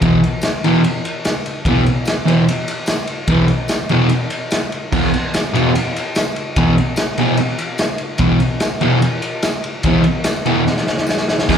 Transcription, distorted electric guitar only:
0.01 0.18 E2 medium
0.01 0.19 B2 medium
0.01 0.19 E3 medium
0.64 0.80 E2 medium
0.64 0.80 B2 loud
0.64 0.81 E3 loud
1.67 1.82 E2 medium
1.67 1.83 B2 loud
1.67 1.83 E3 loud
2.26 2.43 E2 medium
2.26 2.43 B2 loud
2.26 2.44 E3 medium
3.28 3.45 E2 medium
3.28 3.46 B2 medium
3.28 3.46 E3 medium
3.90 4.07 E2 medium
3.90 4.07 B2 loud
3.90 4.07 E3 loud
4.92 5.09 E2 medium
4.92 5.09 B2 medium
4.92 5.09 E3 loud
5.53 5.70 E2 medium
5.53 5.70 B2 medium
5.53 5.71 E3 loud
6.57 6.73 E2 medium
6.57 6.74 B2 medium
6.57 6.74 E3 loud
7.18 7.35 E2 loud
7.18 7.35 B2 loud
7.18 7.36 E3 loud
8.19 8.36 E2 medium
8.19 8.37 B2 medium
8.19 8.37 E3 medium
8.81 8.98 E2 medium
8.81 8.99 B2 medium
8.81 8.99 E3 medium
9.85 10.01 E2 loud
9.85 10.02 B2 medium
9.85 10.02 E3 loud
10.46 10.63 E2 loud
10.46 10.63 B2 medium
10.46 10.63 E3 loud
11.49 11.58 E2 loud

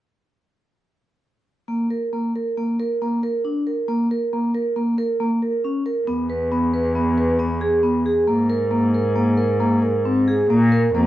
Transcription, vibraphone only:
1.68 1.86 A#3 soft
1.90 2.08 A#4 soft
2.13 2.30 A#3 soft
2.35 2.53 A#4 soft
2.57 2.74 A#3 soft
2.79 2.96 A#4 soft
3.01 3.18 A#3 soft
3.23 3.40 A#4 soft
3.44 3.62 D4 soft
3.66 3.84 A#4 soft
3.88 4.06 A#3 medium
4.11 4.28 A#4 soft
4.33 4.50 A#3 soft
4.55 4.72 A#4 soft
4.76 4.94 A#3 medium
4.98 5.16 A#4 medium
5.20 5.38 A#3 medium
5.42 5.60 A#4 medium
5.64 5.81 C#4 soft
5.86 6.03 A#4 soft
6.07 6.25 B3 medium
6.30 6.47 B4 soft
6.52 6.69 B3 soft
6.74 6.91 B4 medium
6.95 7.13 B3 medium
7.18 7.35 B4 medium
7.39 7.57 B3 medium
7.61 7.79 G#4 medium
7.83 8.01 B3 medium
8.06 8.23 G#4 medium
8.27 8.45 A#3 medium
8.49 8.67 A#4 medium
8.71 8.89 A#3 medium
8.94 9.12 A#4 medium
9.16 9.33 A#3 medium
9.38 9.55 A#4 medium
9.60 9.78 A#3 medium
9.83 10.00 A#4 medium
10.05 10.23 C4 soft
10.28 10.45 G#4 medium
10.50 10.67 A#3 medium
10.72 10.89 A#4 medium
10.95 11.07 A#3 medium

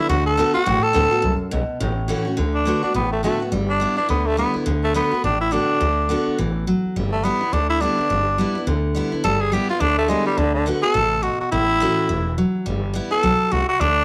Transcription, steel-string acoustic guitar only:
0.09 0.36 D3 loud
0.37 0.54 D3 medium
0.37 0.54 A3 medium
0.37 0.55 B3 loud
0.37 0.52 F#4 loud
0.54 0.66 B3 medium
0.54 0.65 F#4 medium
0.66 1.21 A2 loud
0.93 1.10 D3 loud
0.93 1.11 A3 medium
0.93 1.11 B3 medium
0.93 1.09 F#4 medium
1.11 1.23 B3 soft
1.11 1.22 F#4 medium
1.22 1.50 F#2 medium
1.51 1.79 B2 loud
1.80 2.35 A2 loud
2.08 2.25 E3 medium
2.08 2.25 A3 medium
2.08 2.26 C#4 medium
2.08 2.24 F#4 loud
2.25 2.38 C#4 soft
2.25 2.37 F#4 medium
2.37 2.64 D3 medium
2.65 2.82 D3 medium
2.65 2.83 A3 medium
2.65 2.83 B3 loud
2.65 2.81 F#4 medium
2.83 2.95 B3 medium
2.83 2.94 F#4 medium
2.94 3.50 A2 medium
3.23 3.40 D3 medium
3.23 3.40 A3 medium
3.23 3.40 B3 medium
3.23 3.39 F#4 medium
3.40 3.53 B3 soft
3.40 3.51 F#4 medium
3.52 3.79 G3 medium
3.80 3.97 G3 medium
3.80 3.97 B3 loud
3.80 3.95 E4 medium
3.96 4.10 B3 medium
3.96 4.08 E4 medium
4.09 4.64 D3 medium
4.37 4.54 G3 medium
4.37 4.55 B3 medium
4.37 4.52 E4 medium
4.54 4.67 B3 soft
4.54 4.66 E4 medium
4.66 4.93 D3 loud
4.94 5.11 D3 medium
4.94 5.12 A3 medium
4.94 5.12 B3 loud
4.94 5.10 F#4 medium
5.11 5.25 B3 soft
5.11 5.23 F#4 medium
5.24 5.79 A2 medium
5.51 5.79 D3 medium
5.51 5.80 A3 medium
5.51 5.80 B3 medium
5.51 5.80 F#4 medium
5.81 6.08 D3 medium
6.09 6.37 D3 medium
6.09 6.37 A3 loud
6.09 6.38 B3 loud
6.09 6.38 F#4 medium
6.38 6.66 E3 medium
6.67 6.95 F#3 medium
6.96 7.22 G3 medium
7.23 7.40 G3 medium
7.23 7.41 B3 loud
7.23 7.40 E4 medium
7.41 7.53 B3 soft
7.41 7.52 E4 medium
7.53 8.08 D3 medium
7.81 7.97 G3 medium
7.81 7.98 B3 medium
7.81 7.97 E4 medium
7.98 8.11 B3 soft
7.98 8.10 E4 medium
8.10 8.37 G3 medium
8.38 8.55 G3 medium
8.38 8.55 B3 medium
8.38 8.54 E4 medium
8.55 8.68 B3 soft
8.55 8.66 E4 medium
8.67 9.22 D3 medium
8.95 9.11 G3 medium
8.95 9.12 B3 medium
8.95 9.11 E4 medium
9.12 9.25 B3 soft
9.12 9.23 E4 medium
9.24 9.51 G3 loud
9.52 9.68 G3 medium
9.52 9.69 B3 loud
9.52 9.68 E4 loud
9.69 9.82 B3 soft
9.69 9.80 E4 medium
9.80 10.35 D3 medium
10.08 10.25 G3 medium
10.08 10.26 B3 loud
10.08 10.24 E4 medium
10.25 10.38 B3 soft
10.25 10.37 E4 medium
10.37 10.65 D3 medium
10.66 10.83 D3 medium
10.66 10.83 A3 medium
10.66 10.83 B3 loud
10.66 10.81 F#4 medium
10.83 10.95 B3 soft
10.83 10.94 F#4 medium
10.94 11.22 C3 medium
11.23 11.51 B2 medium
11.52 12.07 A2 medium
11.80 12.08 E3 medium
11.80 12.08 A3 medium
11.80 12.09 C#4 loud
11.80 12.09 F#4 medium
12.09 12.36 E3 medium
12.38 12.65 F#3 medium
12.66 12.92 G3 medium
12.94 13.10 G3 medium
12.94 13.11 B3 medium
12.94 13.09 E4 loud
13.11 13.24 B3 soft
13.11 13.22 E4 medium
13.23 13.51 F#3 medium
13.52 13.79 C3 medium
13.81 14.04 D3 loud

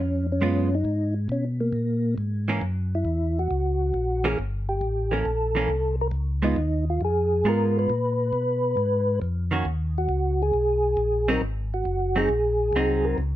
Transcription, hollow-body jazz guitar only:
0.41 0.68 G#3 medium
0.41 0.69 B3 medium
0.41 0.69 F4 medium
2.48 2.61 E3 medium
2.48 2.61 A#3 medium
2.48 2.61 C#4 medium
4.24 4.37 E3 medium
4.24 4.37 A#3 medium
4.24 4.37 C#4 medium
5.11 5.24 E3 soft
5.11 5.25 A#3 medium
5.11 5.25 C#4 medium
5.55 5.68 E3 medium
5.55 5.69 A#3 medium
5.55 5.69 C#4 medium
6.42 6.56 G#3 medium
6.42 6.56 B3 medium
6.42 6.57 F4 medium
7.45 7.89 G#3 soft
7.45 7.90 B3 soft
7.45 7.90 F4 medium
9.51 9.64 D#3 medium
9.51 9.64 A#3 medium
9.51 9.65 C#4 medium
9.51 9.65 F#4 medium
11.28 11.41 F#3 medium
11.28 11.40 C4 medium
11.28 11.41 D#4 medium
12.16 12.28 F#3 medium
12.16 12.28 C4 medium
12.16 12.29 D#4 medium
12.76 13.18 F#3 medium
12.76 13.19 C4 medium
12.76 13.19 D#4 medium

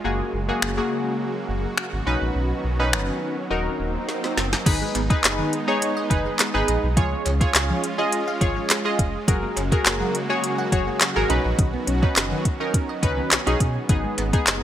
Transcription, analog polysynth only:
0.04 0.38 A#3 medium
0.04 0.39 F#4 medium
0.04 0.39 G#4 medium
0.49 0.71 A#3 medium
0.49 0.71 F#4 medium
0.49 0.71 G#4 medium
0.77 1.67 A#3 medium
0.77 1.67 F#4 medium
0.77 1.67 G#4 medium
2.06 2.64 C#4 medium
2.06 2.64 D#4 medium
2.06 2.64 B4 loud
2.79 3.35 C#4 medium
2.79 3.35 D#4 medium
2.79 3.36 B4 loud
3.50 4.40 D#4 medium
3.50 4.40 F#4 medium
3.50 4.41 A#4 loud
4.66 5.00 D#4 medium
4.66 5.00 G#4 medium
4.66 5.00 B4 medium
5.10 5.54 D#4 medium
5.10 5.54 G#4 medium
5.10 5.54 B4 loud
5.68 6.01 D#4 medium
5.68 6.01 G#4 medium
5.68 6.01 C#5 medium
6.10 6.44 D#4 medium
6.10 6.44 G#4 medium
6.10 6.44 B4 loud
6.54 6.88 D#4 medium
6.54 6.88 G#4 medium
6.54 6.88 B4 medium
6.97 7.31 F4 medium
6.97 7.31 G#4 medium
6.97 7.31 C#5 loud
7.41 7.85 F4 medium
7.41 7.85 G#4 medium
7.41 7.85 C#5 loud
7.98 8.32 F4 medium
7.98 8.32 G#4 medium
7.98 8.32 D#5 loud
8.41 8.75 F4 medium
8.41 8.75 G#4 medium
8.41 8.75 C#5 loud
8.85 9.18 F4 medium
8.85 9.19 G#4 medium
8.85 9.19 D#5 medium
9.28 9.62 F#4 medium
9.28 9.62 G#4 medium
9.28 9.62 A#4 medium
9.72 10.16 F#4 medium
9.72 10.16 G#4 medium
9.72 10.16 A#4 loud
10.30 10.63 F#4 medium
10.30 10.63 G#4 medium
10.30 10.63 C#5 loud
10.72 11.06 F#4 medium
10.72 11.06 G#4 medium
10.72 11.06 C#5 loud
11.16 11.30 F#4 medium
11.16 11.30 G#4 medium
11.16 11.30 A#4 loud
11.30 11.87 C#4 medium
11.30 11.88 D#4 medium
11.30 11.88 B4 loud
12.03 12.47 C#4 medium
12.03 12.47 D#4 medium
12.03 12.47 B4 loud
12.60 12.94 C#4 medium
12.60 12.94 D#4 medium
12.60 12.94 A#4 loud
13.03 13.37 C#4 medium
13.03 13.37 D#4 medium
13.03 13.37 B4 loud
13.47 13.80 C#4 medium
13.47 13.80 D#4 medium
13.47 13.80 G#4 loud
13.89 14.23 B3 medium
13.89 14.23 D#4 medium
13.89 14.23 G#4 medium
14.33 14.63 B3 medium
14.33 14.63 D#4 medium
14.33 14.63 G#4 loud

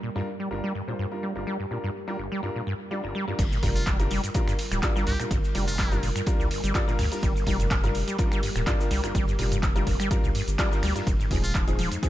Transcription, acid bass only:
0.03 0.10 A#2 medium
0.16 0.22 G2 loud
0.40 0.49 G3 medium
0.51 0.61 G1 medium
0.64 0.73 G3 loud
0.75 0.82 G2 medium
0.88 0.94 A#2 medium
0.99 1.06 G2 loud
1.23 1.33 G3 medium
1.36 1.45 G1 medium
1.47 1.57 G3 medium
1.60 1.66 G2 medium
1.71 1.78 A#2 medium
1.84 1.90 G2 medium
2.08 2.17 G3 medium
2.19 2.29 G1 medium
2.32 2.41 G3 loud
2.43 2.50 G2 medium
2.56 2.62 A#2 medium
2.67 2.74 G2 loud
2.91 3.01 G3 medium
3.04 3.13 G1 medium
3.15 3.25 G3 loud
3.28 3.34 G2 medium
3.39 3.46 G2 medium
3.52 3.58 A#2 medium
3.63 3.70 G2 loud
3.87 3.97 G3 medium
4.00 4.09 G1 medium
4.11 4.21 G3 loud
4.24 4.30 G2 medium
4.35 4.42 A#2 medium
4.48 4.54 G2 loud
4.72 4.81 G3 medium
4.83 4.93 G1 medium
4.96 5.05 G3 loud
5.07 5.14 G2 medium
5.20 5.26 A#2 medium
5.31 5.38 G2 loud
5.55 5.65 G3 medium
5.68 5.77 G1 medium
5.79 5.89 G3 loud
5.92 5.98 G2 medium
6.03 6.10 A#2 medium
6.16 6.22 G2 loud
6.40 6.49 G3 medium
6.51 6.61 G1 medium
6.64 6.73 G3 loud
6.75 6.82 G2 medium
6.88 6.94 A#2 medium
6.99 7.06 G2 loud
7.23 7.33 G3 medium
7.36 7.45 G1 medium
7.47 7.57 G3 loud
7.60 7.66 G2 medium
7.71 7.78 A#2 medium
7.84 7.90 G2 loud
8.08 8.17 G3 medium
8.19 8.29 G1 medium
8.32 8.41 G3 loud
8.43 8.50 G2 medium
8.56 8.62 A#2 medium
8.67 8.74 G2 loud
8.91 9.01 G3 medium
9.04 9.13 G1 medium
9.15 9.25 G3 loud
9.28 9.34 G2 medium
9.39 9.46 A#2 medium
9.52 9.58 G2 loud
9.76 9.85 G3 medium
9.87 9.97 G1 medium
10.00 10.09 G3 loud
10.11 10.18 G2 medium
10.24 10.30 A#2 medium
10.35 10.42 G2 loud
10.59 10.69 G3 medium
10.72 10.81 G1 medium
10.83 10.93 G3 loud
10.96 11.02 G2 medium
11.07 11.14 F2 medium
11.20 11.26 G#2 medium
11.31 11.38 F2 loud
11.55 11.65 F3 medium
11.68 11.77 F1 medium
11.79 11.89 F3 loud
11.92 11.98 F2 medium
12.03 12.09 G#2 medium

